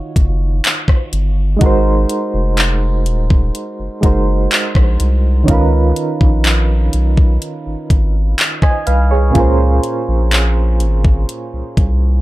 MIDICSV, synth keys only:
0, 0, Header, 1, 2, 480
1, 0, Start_track
1, 0, Tempo, 967742
1, 799, Time_signature, 4, 2, 24, 8
1, 6059, End_track
2, 0, Start_track
2, 0, Title_t, "Synth keys"
2, 0, Program_c, 0, 88
2, 0, Control_c, 0, 64, 127
2, 0, Note_on_c, 0, 51, 78
2, 0, Note_on_c, 0, 63, 68
2, 0, Note_on_c, 0, 65, 70
2, 0, Note_on_c, 0, 66, 71
2, 0, Note_on_c, 0, 73, 85
2, 769, Note_off_c, 0, 51, 0
2, 774, Note_off_c, 0, 63, 0
2, 776, Note_on_c, 0, 56, 74
2, 781, Note_off_c, 0, 65, 0
2, 787, Note_off_c, 0, 66, 0
2, 788, Note_on_c, 0, 63, 72
2, 792, Note_off_c, 0, 73, 0
2, 799, Note_on_c, 0, 66, 68
2, 805, Control_c, 0, 64, 0
2, 811, Note_on_c, 0, 70, 73
2, 823, Note_on_c, 0, 72, 86
2, 881, Control_c, 0, 64, 127
2, 1968, Note_off_c, 0, 56, 0
2, 1973, Note_off_c, 0, 63, 0
2, 1979, Note_off_c, 0, 66, 0
2, 1985, Note_off_c, 0, 70, 0
2, 1988, Note_on_c, 0, 56, 59
2, 1991, Note_off_c, 0, 72, 0
2, 1994, Note_on_c, 0, 63, 50
2, 1999, Note_on_c, 0, 66, 52
2, 2006, Note_on_c, 0, 70, 50
2, 2011, Note_on_c, 0, 72, 62
2, 2696, Note_on_c, 0, 51, 77
2, 2705, Note_on_c, 0, 61, 71
2, 2709, Note_off_c, 0, 63, 0
2, 2714, Note_off_c, 0, 56, 0
2, 2715, Note_on_c, 0, 63, 72
2, 2719, Note_off_c, 0, 66, 0
2, 2723, Note_off_c, 0, 70, 0
2, 2725, Note_off_c, 0, 72, 0
2, 2725, Control_c, 0, 64, 0
2, 2725, Note_on_c, 0, 65, 70
2, 2733, Note_on_c, 0, 70, 72
2, 2743, Note_on_c, 0, 71, 83
2, 2817, Control_c, 0, 64, 127
2, 4146, Note_off_c, 0, 70, 0
2, 4151, Note_off_c, 0, 71, 0
2, 4277, Note_on_c, 0, 80, 67
2, 4281, Note_on_c, 0, 75, 57
2, 4392, Note_off_c, 0, 80, 0
2, 4394, Note_off_c, 0, 75, 0
2, 4397, Note_on_c, 0, 77, 73
2, 4400, Note_on_c, 0, 71, 60
2, 4512, Note_off_c, 0, 77, 0
2, 4514, Note_off_c, 0, 71, 0
2, 4518, Note_on_c, 0, 73, 61
2, 4521, Note_on_c, 0, 68, 57
2, 4608, Note_off_c, 0, 51, 0
2, 4612, Note_off_c, 0, 61, 0
2, 4615, Note_on_c, 0, 46, 76
2, 4617, Note_off_c, 0, 63, 0
2, 4622, Note_off_c, 0, 65, 0
2, 4624, Note_on_c, 0, 61, 73
2, 4633, Note_on_c, 0, 65, 73
2, 4637, Note_off_c, 0, 68, 0
2, 4643, Note_on_c, 0, 68, 74
2, 4645, Control_c, 0, 64, 0
2, 4652, Note_on_c, 0, 70, 71
2, 4661, Note_on_c, 0, 72, 86
2, 4742, Control_c, 0, 64, 127
2, 4746, Note_off_c, 0, 73, 0
2, 6059, Note_off_c, 0, 46, 0
2, 6059, Note_off_c, 0, 61, 0
2, 6059, Note_off_c, 0, 65, 0
2, 6059, Note_off_c, 0, 68, 0
2, 6059, Note_off_c, 0, 70, 0
2, 6059, Note_off_c, 0, 72, 0
2, 6059, End_track
0, 0, End_of_file